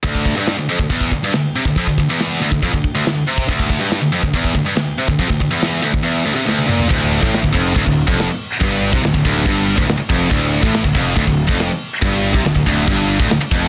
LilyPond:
<<
  \new Staff \with { instrumentName = "Distorted electric guitar" } { \clef bass \time 4/4 \key d \minor \tempo 4 = 140 d,8. g,8 d,16 f,16 d,16 e,8 d,16 g,16 d,8 c16 d,16 | f,16 d,16 d,16 e,8. d,16 d,16 f,16 d,8 d,16 d,8 c8 | d,8. g,8 d,16 f,16 d,16 e,8 d,16 g,16 d,8 c16 d,16 | f,16 d,16 d,16 e,8. d,16 d,16 e,8 d,16 c16 d,8 bes,8 |
d,8. a,8 d,16 f,8 d,16 d,8 f,8 r8. | g,8. c16 d,16 d,16 d,8 g,8. d,16 d,16 r16 f,8 | d,8. a,8 d,16 f,8 d,16 d,8 f,8 r8. | g,8. c16 d,16 d,16 d,8 g,8. d,16 d,16 r16 f,8 | }
  \new Staff \with { instrumentName = "Distorted electric guitar" } { \clef bass \time 4/4 \key d \minor d,8. g,8 d,16 f,16 d,16 e,8 d,16 g,16 d,8 c16 d,16 | f,16 d,16 d,16 e,8. d,16 d,16 f,16 d,8 d,16 d,8 c8 | d,8. g,8 d,16 f,16 d,16 e,8 d,16 g,16 d,8 c16 d,16 | f,16 d,16 d,16 e,8. d,16 d,16 e,8 d,16 c16 d,8 bes,8 |
d,8. a,8 d,16 f,8 d,16 d,8 f,8 r8. | g,8. c16 d,16 d,16 d,8 g,8. d,16 d,16 r16 f,8 | d,8. a,8 d,16 f,8 d,16 d,8 f,8 r8. | g,8. c16 d,16 d,16 d,8 g,8. d,16 d,16 r16 f,8 | }
  \new Staff \with { instrumentName = "Distorted electric guitar" } { \clef bass \time 4/4 \key d \minor r1 | r1 | r1 | r1 |
d,8. a,8 d,16 f,8 d,16 d,8 f,8 r8. | g,8. c16 d,16 d,16 d,8 g,8. d,16 d,16 r16 f,8 | d,8. a,8 d,16 f,8 d,16 d,8 f,8 r8. | g,8. c16 d,16 d,16 d,8 g,8. d,16 d,16 r16 f,8 | }
  \new Staff \with { instrumentName = "Picked electric bass" } { \clef bass \time 4/4 \key d \minor r1 | r1 | r1 | r1 |
d,,8. a,,8 d,,16 f,,8 d,,16 d,,8 f,,8 r8. | g,,8. c,16 d,,16 d,,16 d,,8 g,,8. d,,16 d,,16 r16 f,,8 | d,,8. a,,8 d,,16 f,,8 d,,16 d,,8 f,,8 r8. | g,,8. c,16 d,,16 d,,16 d,,8 g,,8. d,,16 d,,16 r16 f,,8 | }
  \new DrumStaff \with { instrumentName = "Drums" } \drummode { \time 4/4 <bd rb>16 bd16 bd8 <rb sn>8. bd16 <bd rb>16 bd16 bd8 <rb sn>8. bd16 | <bd rb>16 bd16 bd8 <rb sn>8. bd16 <bd rb>16 bd16 bd8 <rb sn>8. bd16 | <bd rb>16 bd16 bd8 <rb sn>8. bd16 <bd rb>16 bd16 bd8 <rb sn>8. bd16 | <bd rb>16 bd16 bd8 <rb sn>8. bd16 r4 sn16 tommh16 toml16 tomfh16 |
<cymc bd>8. bd16 <cymc sn>16 bd16 bd8 <cymc bd>16 bd8 bd16 <cymc sn>4 | <cymc bd>8. bd16 <cymc sn>16 bd16 bd8 <cymc bd>8. bd16 <cymc sn>8 bd8 | <cymc bd>8. bd16 <cymc sn>16 bd16 bd8 <cymc bd>16 bd8 bd16 <cymc sn>4 | <cymc bd>8. bd16 <cymc sn>16 bd16 bd8 <cymc bd>8. bd16 <cymc sn>8 bd8 | }
>>